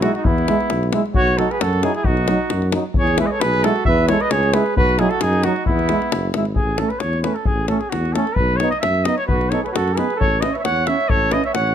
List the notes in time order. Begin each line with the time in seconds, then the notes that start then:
0.01 G#3 D#4 E4 F#4, davul high
0.14 D#4 F#4, davul high
0.24 E2 B3 E4, davul low
0.38 davul high
0.48 G#3 E4, davul high
0.60 davul high
0.70 B1, davul high
0.83 davul high
0.93 G#3 E4, davul high
1.06 davul high
1.14 B1 F#4 C#5, davul low
1.27 davul high
1.37 F#3 D#4 F#4 A4, davul high
1.51 G#4 B4, davul high
1.60 F#2 F#4 A4, davul high
1.73 davul high
1.82 F#3 D#4 E4 G#4, davul high
1.94 E4 G#4, davul high
2.04 B1 D#4 F#4, davul low
2.17 davul high
2.28 F#3 D#4, davul high
2.50 F#2, davul high
2.62 davul high
2.72 F#3 D#4, davul high
2.94 E2, davul low
2.98 G#4 C#5
3.07 davul high
3.18 G#3 E4 G#4 B4, davul high
3.26 B4 D#5
3.31 A4 C#5
3.40 B1 G#4 B4, davul high
3.54 davul high
3.64 G#3 E4 F#4 A4, davul high
3.76 davul high
3.85 E2 B4 E5, davul low
3.98 davul high
4.08 G#3 E4 A4 C#5, davul high
4.20 B4 D#5, davul high
4.31 C#2 G#4 C#5, davul high
4.43 davul high
4.53 G#3 E4 G#4 B4, davul high
4.66 davul high
4.76 B1 F#4 B4, davul low
4.89 davul high
4.99 F#3 D#4 E4 G#4, davul high
5.10 F#4 A4, davul high
5.21 F#2 D#4 G#4, davul high
5.33 davul high
5.43 F#3 D#4 F#4, davul high
5.56 davul high
5.66 E2 B3 E4, davul low
5.79 davul high
5.89 G#3 E4, davul high
6.02 davul high
6.12 F#1, davul high
6.34 G#1 G#3 E4, davul high
6.45 davul high
6.55 A1 G#4, davul low
6.78 A3 C#4 A4, davul high
6.89 B4, davul high
6.99 E2 C#5, davul high
7.13 davul high
7.21 C#4 B4 C#5, davul high
7.25 A3
7.34 A4, davul high
7.45 A1 G#4, davul low
7.68 A3 C#4 A4, davul high
7.79 G#4, davul high
7.89 E2 F#4, davul high
8.05 davul high
8.13 A3 C#4 A4, davul high
8.27 davul high
8.35 B1 B4, davul low
8.56 C#5, davul high
8.61 B3 D#4
8.71 D#5, davul high
8.80 F#2 E5, davul high
8.95 davul high
9.04 B3 D#4 D#5, davul high
9.17 C#5, davul high
9.27 B1 F#4 B4, davul low
9.41 davul high
9.50 B3 D#4 A4 C#5, davul high
9.63 G#4 B4, davul high
9.67 A4 B4 C#5
9.72 F#2 F#4 A4, davul high
9.88 davul high
9.93 D#4 G#4
9.97 B3 B4, davul high
10.10 davul high
10.16 A4
10.20 A1 C#5, davul low
10.40 C#4 E4 B4 D#5, davul high
10.51 C#5 E5
10.55 B4 C#5 E5, davul high
10.63 E2 C#5 F#5, davul high
10.76 davul high
10.87 C#4 E4 C#5 E5, davul high
11.00 davul high
11.09 A1 A4 C#5, davul low
11.31 C#4 E4 B4 D#5, davul high
11.44 C#5 E5, davul high
11.53 A1 C#5 F#5, davul high
11.67 davul high